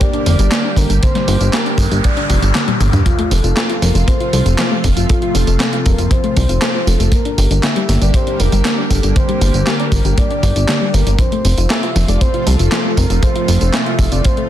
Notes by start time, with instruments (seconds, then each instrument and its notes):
Already playing: analog synth pad D3 G3 A#3 G4
0.01 synth arpeggio sound G4, soft synth lead D5, kick, closed hi-hat, tambourine
0.13 synth arpeggio sound D4, closed hi-hat
0.26 analog synth bass F1, synth arpeggio sound D3, open hi-hat, tambourine
0.39 analog synth bass G1, synth arpeggio sound G3, closed hi-hat, tambourine
0.52 synth arpeggio sound A#3, snare, clap, closed hi-hat, tambourine
0.64 synth arpeggio sound D4
0.76 analog synth bass G1, synth arpeggio sound G4, soft synth lead A#4, kick, open hi-hat, tambourine
0.90 analog synth bass G1, synth arpeggio sound D4, closed hi-hat, tambourine
1.03 synth arpeggio sound D3, soft synth lead C5, kick, closed hi-hat, tambourine, noise sweep
1.15 synth arpeggio sound G3, snare, closed hi-hat
1.28 analog synth bass G1, synth arpeggio sound A#3, open hi-hat, tambourine
1.40 analog synth bass G1, synth arpeggio sound D4, closed hi-hat, tambourine
1.53 synth arpeggio sound G4, soft synth lead A#4, snare, clap, closed hi-hat, tambourine
1.66 synth arpeggio sound D4, closed hi-hat
1.78 analog synth bass G1, synth arpeggio sound D3, kick, open hi-hat, tambourine
1.91 analog synth bass G1, synth arpeggio sound G3, closed hi-hat, tambourine
2.04 synth arpeggio sound A#3, soft synth lead D5, kick, closed hi-hat, tambourine
2.17 synth arpeggio sound D4, closed hi-hat
2.29 analog synth bass F1, synth arpeggio sound G4, kick, open hi-hat, tambourine
2.42 analog synth bass G1, synth arpeggio sound D4, closed hi-hat, tambourine
2.55 synth arpeggio sound D3, snare, clap, closed hi-hat, tambourine
2.68 synth arpeggio sound G3, closed hi-hat, high tom
2.80 analog synth bass G1, synth arpeggio sound A#3, open hi-hat, mid tom, tambourine
2.93 analog synth bass G2, synth arpeggio sound D4, closed hi-hat, mid tom, tambourine
3.06 analog synth pad C3 F3 A3 F4, synth arpeggio sound F3, soft synth lead F4, kick, closed hi-hat, tambourine
3.19 synth arpeggio sound A3, closed hi-hat
3.31 analog synth bass F1, synth arpeggio sound C4, soft synth lead A4, open hi-hat, tambourine
3.44 analog synth bass F1, synth arpeggio sound F4, closed hi-hat, tambourine
3.57 synth arpeggio sound A4, snare, clap, closed hi-hat, tambourine
3.70 synth arpeggio sound F4, closed hi-hat
3.82 analog synth bass F1, synth arpeggio sound F3, soft synth lead A#4, snare, open hi-hat, tambourine
3.95 analog synth bass F1, synth arpeggio sound A3, closed hi-hat, tambourine
4.08 synth arpeggio sound C4, soft synth lead C5, kick, closed hi-hat, tambourine
4.20 synth arpeggio sound F4, closed hi-hat
4.33 analog synth bass C2, synth arpeggio sound A4, open hi-hat, tambourine
4.46 analog synth bass F1, synth arpeggio sound F4, closed hi-hat, tambourine
4.59 synth arpeggio sound F3, snare, clap, closed hi-hat, tambourine
4.71 synth arpeggio sound A3
4.84 analog synth bass F1, synth arpeggio sound C4, kick, open hi-hat, tambourine
4.97 analog synth bass F1, synth arpeggio sound F4, closed hi-hat, tambourine
5.09 soft synth lead F4, synth arpeggio sound A4, kick, closed hi-hat, tambourine
5.22 synth arpeggio sound F4, closed hi-hat
5.35 analog synth bass F1, synth arpeggio sound F3, soft synth lead A4, open hi-hat, tambourine
5.47 analog synth bass F1, synth arpeggio sound A3, closed hi-hat, tambourine
5.60 synth arpeggio sound C4, snare, clap, closed hi-hat, tambourine
5.73 synth arpeggio sound F4, closed hi-hat
5.86 analog synth bass F1, synth arpeggio sound A4, soft synth lead A#4, kick, open hi-hat, tambourine
5.98 analog synth bass F1, synth arpeggio sound F4, closed hi-hat, tambourine
6.11 synth arpeggio sound F3, soft synth lead C5, kick, closed hi-hat, tambourine
6.24 synth arpeggio sound A3, closed hi-hat
6.37 analog synth bass C2, synth arpeggio sound C4, kick, open hi-hat, tambourine
6.49 analog synth bass F1, synth arpeggio sound F4, closed hi-hat, tambourine
6.62 synth arpeggio sound A4, snare, clap, closed hi-hat, tambourine
6.75 synth arpeggio sound F4
6.87 analog synth bass F1, synth arpeggio sound F3, soft synth lead A4, open hi-hat, tambourine
7.00 analog synth bass F1, synth arpeggio sound A3, closed hi-hat, tambourine
7.12 analog synth pad D3 G3 A#3 G4, synth arpeggio sound A#3, soft synth lead A#4, kick, closed hi-hat, tambourine
7.25 synth arpeggio sound D4, closed hi-hat
7.38 analog synth bass G1, synth arpeggio sound G4, open hi-hat, tambourine
7.51 analog synth bass G1, synth arpeggio sound D4, closed hi-hat, tambourine
7.63 synth arpeggio sound D3, soft synth lead E5, snare, clap, closed hi-hat, tambourine
7.76 synth arpeggio sound G3, closed hi-hat
7.89 analog synth bass G1, synth arpeggio sound A#3, snare, open hi-hat, tambourine
8.02 analog synth bass G1, synth arpeggio sound D4, soft synth lead D5, closed hi-hat, tambourine
8.14 synth arpeggio sound G4, soft synth lead C5, kick, closed hi-hat, tambourine
8.27 synth arpeggio sound D4, closed hi-hat
8.40 analog synth bass F1, synth arpeggio sound D3, soft synth lead A#4, open hi-hat, tambourine
8.52 analog synth bass G1, synth arpeggio sound G3, closed hi-hat, tambourine
8.65 synth arpeggio sound A#3, snare, clap, closed hi-hat, tambourine
8.78 synth arpeggio sound D4
8.90 analog synth bass G1, synth arpeggio sound G4, soft synth lead A4, kick, open hi-hat, tambourine
9.03 analog synth bass G1, synth arpeggio sound D4, closed hi-hat, tambourine
9.16 synth arpeggio sound D3, soft synth lead C5, kick, closed hi-hat, tambourine
9.29 synth arpeggio sound G3, closed hi-hat
9.41 analog synth bass G1, synth arpeggio sound A#3, open hi-hat, tambourine
9.54 analog synth bass G1, synth arpeggio sound D4, closed hi-hat, tambourine
9.67 synth arpeggio sound G4, soft synth lead A#4, snare, clap, closed hi-hat, tambourine
9.80 synth arpeggio sound D4, closed hi-hat
9.92 analog synth bass G1, synth arpeggio sound D3, kick, open hi-hat, tambourine
10.05 analog synth bass G1, synth arpeggio sound G3, closed hi-hat, tambourine
10.18 synth arpeggio sound A#3, soft synth lead D5, kick, closed hi-hat, tambourine
10.31 synth arpeggio sound D4, closed hi-hat
10.43 analog synth bass G1, synth arpeggio sound G4, kick, open hi-hat, tambourine
10.56 analog synth bass G1, synth arpeggio sound D4, closed hi-hat, tambourine
10.69 synth arpeggio sound D3, snare, clap, closed hi-hat, tambourine
10.81 synth arpeggio sound G3
10.94 analog synth bass G1, synth arpeggio sound A#3, soft synth lead A#4, open hi-hat, tambourine
11.07 analog synth bass G1, synth arpeggio sound D4, closed hi-hat, tambourine
11.19 analog synth pad C3 F3 A3 F4, synth arpeggio sound F3, soft synth lead C5, kick, closed hi-hat, tambourine
11.32 synth arpeggio sound A3, closed hi-hat
11.45 analog synth bass F1, synth arpeggio sound C4, open hi-hat, tambourine
11.58 analog synth bass F1, synth arpeggio sound F4, closed hi-hat, tambourine
11.70 synth arpeggio sound A4, soft synth lead E5, snare, clap, closed hi-hat, tambourine
11.83 synth arpeggio sound F4, closed hi-hat
11.96 analog synth bass F1, synth arpeggio sound F3, snare, open hi-hat, tambourine
12.08 analog synth bass F1, synth arpeggio sound A3, soft synth lead D5, closed hi-hat, tambourine
12.21 synth arpeggio sound C4, soft synth lead C5, kick, closed hi-hat, tambourine
12.34 synth arpeggio sound F4, closed hi-hat
12.46 analog synth bass C2, synth arpeggio sound A4, soft synth lead A4, open hi-hat, tambourine
12.59 analog synth bass F1, synth arpeggio sound F4, closed hi-hat, tambourine
12.72 synth arpeggio sound F3, snare, clap, closed hi-hat, tambourine
12.85 synth arpeggio sound A3
12.97 analog synth bass F1, synth arpeggio sound C4, soft synth lead A#4, kick, open hi-hat, tambourine
13.10 analog synth bass F1, synth arpeggio sound F4, closed hi-hat, tambourine
13.23 synth arpeggio sound A4, soft synth lead C5, kick, closed hi-hat, tambourine
13.36 synth arpeggio sound F4, closed hi-hat
13.48 analog synth bass F1, synth arpeggio sound F3, open hi-hat, tambourine
13.61 analog synth bass F1, synth arpeggio sound A3, closed hi-hat, tambourine
13.74 synth arpeggio sound C4, soft synth lead E5, snare, clap, closed hi-hat, tambourine
13.86 synth arpeggio sound F4, closed hi-hat
13.99 analog synth bass F1, synth arpeggio sound A4, kick, open hi-hat, tambourine
14.12 analog synth bass F1, synth arpeggio sound F4, soft synth lead D5, closed hi-hat, tambourine
14.24 synth arpeggio sound F3, soft synth lead C5, kick, closed hi-hat, tambourine
14.37 synth arpeggio sound A3, closed hi-hat